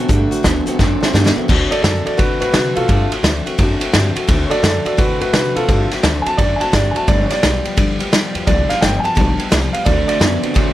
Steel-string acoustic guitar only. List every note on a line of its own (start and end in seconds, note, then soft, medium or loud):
0.08 0.31 D3 medium
0.08 0.32 A3 medium
0.08 0.31 C4 medium
0.08 0.30 F#4 loud
0.31 0.43 A3 medium
0.31 0.44 C4 medium
0.31 0.44 F#4 medium
0.43 0.66 D3 medium
0.43 0.66 A3 medium
0.43 0.66 C4 medium
0.43 0.65 F#4 medium
0.66 0.78 A3 medium
0.66 0.79 C4 medium
0.66 0.78 F#4 medium
0.79 1.01 D3 medium
0.79 1.02 A3 medium
0.79 1.01 C4 loud
0.79 0.99 F#4 loud
1.01 1.14 A3 medium
1.01 1.14 C4 medium
1.01 1.13 F#4 medium
1.14 1.36 D3 medium
1.14 1.37 A3 medium
1.14 1.37 C4 medium
1.14 1.35 F#4 medium
1.36 1.48 A3 medium
1.36 1.48 C4 medium
1.36 1.49 F#4 medium
1.48 1.71 D3 medium
1.48 1.72 A3 medium
1.48 1.71 C4 medium
1.48 1.69 F#4 loud
1.71 1.83 A3 soft
1.71 1.84 C4 soft
1.71 1.83 F#4 medium
1.83 2.06 D3 medium
1.83 2.06 C4 medium
1.83 2.04 F#4 medium
2.06 2.17 A3 soft
2.06 2.18 C4 soft
2.06 2.18 F#4 medium
2.17 2.41 D3 medium
2.17 2.41 A3 medium
2.17 2.40 C4 medium
2.17 2.39 F#4 medium
2.40 2.52 A3 soft
2.40 2.53 C4 medium
2.40 2.53 F#4 medium
2.52 2.76 D3 medium
2.52 2.76 A3 medium
2.52 2.76 C4 medium
2.52 2.74 F#4 medium
2.75 2.88 A3 soft
2.75 2.88 C4 soft
2.75 2.88 F#4 medium
2.88 3.11 D3 medium
2.88 3.11 A3 medium
2.88 3.11 C4 medium
2.88 3.10 F#4 medium
3.11 3.23 A3 soft
3.11 3.24 C4 soft
3.11 3.24 F#4 medium
3.23 3.46 D3 medium
3.23 3.47 A3 medium
3.23 3.46 C4 medium
3.23 3.45 F#4 medium
3.46 3.57 A3 medium
3.46 3.58 C4 medium
3.46 3.58 F#4 medium
3.58 3.81 D3 medium
3.58 3.81 A3 medium
3.58 3.81 C4 loud
3.58 3.79 F#4 medium
3.80 3.93 A3 medium
3.80 3.94 C4 medium
3.80 3.93 F#4 medium
3.92 4.16 D3 medium
3.92 4.16 A3 medium
3.92 4.16 C4 medium
3.92 4.14 F#4 medium
4.16 4.27 A3 medium
4.16 4.27 C4 medium
4.16 4.28 F#4 medium
4.27 4.50 D3 medium
4.27 4.51 A3 medium
4.27 4.51 C4 medium
4.27 4.50 F#4 loud
4.51 4.62 A3 soft
4.51 4.64 C4 soft
4.51 4.63 F#4 medium
4.63 4.86 D3 medium
4.63 4.86 A3 medium
4.63 4.86 C4 medium
4.63 4.84 F#4 medium
4.85 4.97 A3 soft
4.85 4.98 C4 medium
4.85 4.98 F#4 medium
4.97 5.20 D3 medium
4.97 5.21 A3 medium
4.97 5.21 C4 medium
4.97 5.19 F#4 medium
5.20 5.33 A3 soft
5.20 5.34 C4 medium
5.20 5.33 F#4 medium
5.33 5.56 D3 medium
5.33 5.56 A3 medium
5.33 5.57 C4 medium
5.33 5.55 F#4 medium
5.56 5.69 A3 soft
5.56 5.69 C4 medium
5.56 5.68 F#4 medium
5.69 5.91 D3 medium
5.69 5.92 A3 medium
5.69 5.92 C4 medium
5.69 5.90 F#4 loud
5.91 6.03 A3 soft
5.91 6.04 C4 medium
5.91 6.03 F#4 medium
6.03 6.25 D3 medium
6.03 6.26 A3 medium
6.03 6.26 C4 medium
6.03 6.25 F#4 medium
6.26 6.38 A3 soft
6.26 6.39 C4 medium
6.26 6.38 F#4 medium
6.39 6.61 D3 medium
6.39 6.61 A3 medium
6.39 6.61 C4 medium
6.39 6.60 F#4 medium
6.61 6.72 A3 soft
6.61 6.73 C4 soft
6.61 6.73 F#4 medium
6.72 6.95 D3 medium
6.72 6.95 A3 medium
6.72 6.95 C4 medium
6.72 6.93 F#4 medium
6.95 7.08 A3 soft
6.95 7.08 C4 soft
6.95 7.07 F#4 medium
7.07 7.30 G2 medium
7.07 7.30 D3 medium
7.07 7.30 F3 medium
7.07 7.30 G3 medium
7.07 7.29 B3 medium
7.07 7.28 G4 medium
7.29 7.40 F3 soft
7.29 7.41 G3 soft
7.29 7.42 B3 medium
7.29 7.42 G4 medium
7.41 7.64 F3 medium
7.41 7.65 G3 medium
7.41 7.64 B3 medium
7.41 7.63 G4 medium
7.64 7.76 F3 soft
7.64 7.77 G3 medium
7.64 7.77 B3 medium
7.64 7.77 G4 medium
7.77 7.99 G2 medium
7.77 8.00 D3 medium
7.77 8.00 F3 medium
7.77 8.00 G3 loud
7.77 7.99 B3 medium
7.77 7.98 G4 loud
7.99 8.10 F3 medium
7.99 8.11 G3 medium
7.99 8.12 B3 medium
7.99 8.12 G4 medium
8.12 8.34 F3 medium
8.12 8.35 G3 medium
8.12 8.34 B3 medium
8.12 8.34 G4 medium
8.35 8.46 F3 medium
8.35 8.47 G3 medium
8.35 8.47 B3 medium
8.35 8.47 G4 medium
8.47 8.69 G2 medium
8.47 8.70 D3 medium
8.47 8.70 F3 medium
8.47 8.70 G3 medium
8.47 8.69 B3 medium
8.47 8.68 G4 medium
8.69 8.80 F3 soft
8.69 8.81 G3 medium
8.69 8.82 B3 medium
8.69 8.81 G4 medium
8.82 9.04 F3 medium
8.82 9.04 G3 medium
8.82 9.03 B3 medium
8.82 9.02 G4 medium
9.04 9.15 F3 medium
9.04 9.15 G3 medium
9.04 9.16 B3 medium
9.04 9.16 G4 medium
9.15 9.38 G2 medium
9.15 9.38 D3 medium
9.15 9.39 F3 medium
9.15 9.38 G3 medium
9.15 9.38 B3 medium
9.15 9.36 G4 medium
9.37 9.48 F3 soft
9.37 9.49 G3 medium
9.37 9.50 B3 medium
9.37 9.51 G4 medium
9.49 9.73 F3 medium
9.49 9.73 G3 medium
9.49 9.73 B3 medium
9.49 9.72 G4 medium
9.73 9.84 F3 soft
9.73 9.85 G3 soft
9.73 9.86 B3 medium
9.73 9.86 G4 medium
9.85 10.08 D3 medium
9.85 10.08 A3 medium
9.85 10.08 C4 medium
9.85 10.06 F#4 medium
10.07 10.19 A3 soft
10.07 10.20 C4 soft
10.07 10.20 F#4 medium
10.19 10.43 D3 medium
10.19 10.43 A3 medium
10.19 10.42 C4 medium
10.19 10.41 F#4 medium
10.42 10.54 A3 soft
10.42 10.54 C4 medium
10.42 10.55 F#4 medium
10.54 10.73 D3 medium
10.54 10.73 A3 medium
10.54 10.73 C4 loud
10.54 10.73 F#4 loud